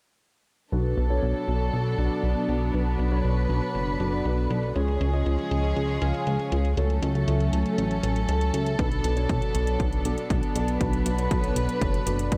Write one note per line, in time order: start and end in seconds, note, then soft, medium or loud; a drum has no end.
0.72 0.95 B1 medium
0.72 1.07 B2 medium
0.72 4.72 F#3 medium
0.72 4.72 B3 medium
0.72 4.72 D4 medium
0.72 1.07 D4 medium
0.72 1.07 F#4 medium
0.72 1.07 A4 medium
0.72 2.72 A4 medium
0.72 1.07 B4 medium
0.72 closed hi-hat medium
0.85 closed hi-hat soft
0.97 1.20 B1 medium
0.97 closed hi-hat medium
1.10 1.95 B2 medium
1.10 1.95 D4 medium
1.10 1.95 F#4 medium
1.10 1.95 A4 medium
1.10 1.95 C#5 medium
1.10 closed hi-hat soft
1.23 1.34 B1 medium
1.23 closed hi-hat medium
1.35 closed hi-hat soft
1.48 1.70 B1 medium
1.48 closed hi-hat medium
1.73 1.95 B1 medium
1.73 closed hi-hat medium
1.86 closed hi-hat soft
1.98 2.09 B1 medium
1.98 2.71 B2 medium
1.98 2.71 D4 medium
1.98 2.71 F#4 medium
1.98 2.71 A4 medium
1.98 2.71 D5 medium
1.98 closed hi-hat medium
2.11 closed hi-hat soft
2.23 2.35 B1 medium
2.23 closed hi-hat medium
2.36 closed hi-hat soft
2.49 2.71 B1 medium
2.49 closed hi-hat medium
2.61 closed hi-hat soft
2.74 2.96 B1 medium
2.74 3.09 B2 medium
2.74 3.09 D4 medium
2.74 3.09 F#4 medium
2.74 3.09 A4 medium
2.74 3.09 B4 medium
2.74 4.74 B4 medium
2.74 closed hi-hat medium
2.87 closed hi-hat soft
2.99 3.21 B1 medium
2.99 closed hi-hat medium
3.12 3.97 B2 medium
3.12 3.97 D4 medium
3.12 3.97 F#4 medium
3.12 3.97 A4 medium
3.12 3.97 C#5 medium
3.12 closed hi-hat soft
3.24 3.47 B1 medium
3.24 closed hi-hat medium
3.37 closed hi-hat soft
3.49 3.61 B1 medium
3.49 closed hi-hat medium
3.62 closed hi-hat soft
3.75 3.97 F#1 medium
3.75 closed hi-hat medium
3.87 closed hi-hat soft
4.00 4.22 F#1 medium
4.00 4.73 B2 medium
4.00 4.73 D4 medium
4.00 4.73 F#4 medium
4.00 4.73 A4 medium
4.00 4.73 D5 medium
4.00 closed hi-hat medium
4.13 closed hi-hat soft
4.25 4.47 B1 medium
4.25 closed hi-hat medium
4.38 closed hi-hat soft
4.50 4.73 B1 medium
4.50 closed hi-hat medium
4.63 closed hi-hat soft
4.75 4.98 C#2 medium
4.75 5.10 C#3 medium
4.75 6.75 F3 medium
4.75 6.75 G#3 medium
4.75 5.10 C#4 medium
4.75 6.75 C#4 medium
4.75 5.10 F4 medium
4.75 6.75 G#4 medium
4.75 5.10 G#4 medium
4.75 5.10 C#5 medium
4.75 closed hi-hat medium
4.88 closed hi-hat soft
5.01 5.23 C#2 medium
5.01 closed hi-hat medium
5.13 5.99 C#3 medium
5.13 5.99 C#4 medium
5.13 5.99 F4 medium
5.13 5.99 G#4 medium
5.13 5.99 D#5 medium
5.13 closed hi-hat soft
5.26 5.37 C#2 medium
5.26 closed hi-hat medium
5.39 closed hi-hat soft
5.51 5.74 C#2 medium
5.51 closed hi-hat medium
5.64 closed hi-hat soft
5.76 5.99 C#2 medium
5.76 closed hi-hat medium
5.89 closed hi-hat soft
6.02 6.13 C#2 medium
6.02 6.74 C#3 medium
6.02 6.74 C#4 medium
6.02 6.74 F4 medium
6.02 6.74 G#4 medium
6.02 6.74 F5 medium
6.02 closed hi-hat medium
6.14 closed hi-hat soft
6.27 6.38 C#2 medium
6.27 closed hi-hat medium
6.39 closed hi-hat soft
6.52 6.74 C#2 medium
6.52 closed hi-hat medium
6.65 closed hi-hat soft
6.77 7.00 C#2 medium
6.77 7.12 C#3 medium
6.77 8.77 F#3 medium
6.77 8.77 A3 medium
6.77 7.12 C#4 medium
6.77 8.77 C#4 medium
6.77 7.12 F#4 medium
6.77 7.12 A4 medium
6.77 10.77 A4 medium
6.77 7.12 C#5 medium
6.77 closed hi-hat medium
6.90 closed hi-hat soft
7.02 7.25 C#2 medium
7.02 closed hi-hat medium
7.15 8.00 C#3 medium
7.15 8.00 C#4 medium
7.15 8.00 F#4 medium
7.15 8.00 A4 medium
7.15 8.00 E5 medium
7.15 closed hi-hat soft
7.28 7.50 C#2 loud
7.28 closed hi-hat medium
7.40 closed hi-hat soft
7.53 7.64 C#2 medium
7.53 closed hi-hat medium
7.66 closed hi-hat soft
7.78 8.00 A1 medium
7.78 closed hi-hat medium
7.91 closed hi-hat soft
8.03 8.26 A1 medium
8.03 closed hi-hat medium
8.16 closed hi-hat soft
8.29 8.51 C#2 medium
8.29 closed hi-hat medium
8.41 closed hi-hat soft
8.54 8.76 C#2 medium
8.54 8.76 C#4 medium
8.54 8.76 F#4 medium
8.54 8.76 A4 medium
8.54 8.76 E5 medium
8.54 closed hi-hat medium
8.66 closed hi-hat soft
8.79 9.01 B1 medium
8.79 9.14 B2 medium
8.79 12.37 F#3 medium
8.79 12.37 B3 medium
8.79 9.14 D4 medium
8.79 12.37 D4 medium
8.79 9.14 F#4 medium
8.79 9.14 A4 medium
8.79 9.14 B4 medium
8.79 kick loud
8.79 closed hi-hat medium
8.92 closed hi-hat soft
9.04 9.26 B1 medium
9.04 closed hi-hat medium
9.17 10.02 B2 medium
9.17 10.02 D4 medium
9.17 10.02 F#4 medium
9.17 10.02 A4 medium
9.17 10.02 C#5 medium
9.17 closed hi-hat soft
9.29 9.41 B1 medium
9.29 kick loud
9.29 closed hi-hat medium
9.42 closed hi-hat soft
9.55 9.77 B1 medium
9.55 closed hi-hat medium
9.67 closed hi-hat soft
9.80 10.02 B1 medium
9.80 kick loud
9.80 closed hi-hat medium
9.93 closed hi-hat soft
10.05 10.16 B1 medium
10.05 10.78 B2 medium
10.05 10.78 D4 medium
10.05 10.78 F#4 medium
10.05 10.78 A4 medium
10.05 10.78 D5 medium
10.05 closed hi-hat medium
10.18 closed hi-hat soft
10.30 10.41 B1 medium
10.30 kick loud
10.30 closed hi-hat medium
10.43 closed hi-hat soft
10.55 10.78 B1 medium
10.55 closed hi-hat medium
10.68 closed hi-hat soft
10.81 11.03 B1 medium
10.81 11.15 B2 medium
10.81 11.15 D4 medium
10.81 11.15 F#4 medium
10.81 11.15 A4 medium
10.81 11.15 B4 medium
10.81 12.37 B4 medium
10.81 kick loud
10.81 closed hi-hat medium
10.93 closed hi-hat soft
11.06 11.28 B1 loud
11.06 closed hi-hat medium
11.18 12.04 B2 medium
11.18 12.04 D4 medium
11.18 12.04 F#4 medium
11.18 12.04 A4 medium
11.18 12.04 C#5 medium
11.18 closed hi-hat soft
11.31 11.53 B1 loud
11.31 kick loud
11.31 closed hi-hat medium
11.44 closed hi-hat soft
11.56 11.67 B1 medium
11.56 closed hi-hat medium
11.69 closed hi-hat soft
11.81 12.04 F#1 medium
11.81 kick loud
11.81 closed hi-hat medium
11.94 closed hi-hat soft
12.07 12.29 F#1 medium
12.07 12.37 B2 medium
12.07 12.37 D4 medium
12.07 12.37 F#4 medium
12.07 12.37 A4 medium
12.07 12.37 D5 medium
12.07 closed hi-hat medium
12.19 closed hi-hat soft
12.32 12.37 B1 medium
12.32 kick loud
12.32 closed hi-hat medium